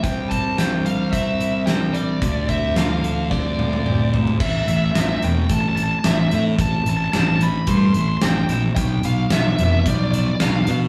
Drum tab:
CC |----------------|----------------|x---------------|----------------|
HH |x-x-x-x-x-x-x-x-|x-x-x-x---------|--x-x-x-x-x-x-x-|x-x-x-x-x-x-x-x-|
SD |----o-------o---|----o---o-------|----o-------o---|----o-------o---|
T1 |----------------|----------oo----|----------------|----------------|
T2 |----------------|------------o---|----------------|----------------|
FT |----------------|--------------oo|----------------|----------------|
BD |o-o-----o-------|o-o-----o-------|o-------o-------|o-------o-------|

CC |----------------|
HH |x-x-x-x-x-x-x-x-|
SD |----o-------o---|
T1 |----------------|
T2 |----------------|
FT |----------------|
BD |o-------o-------|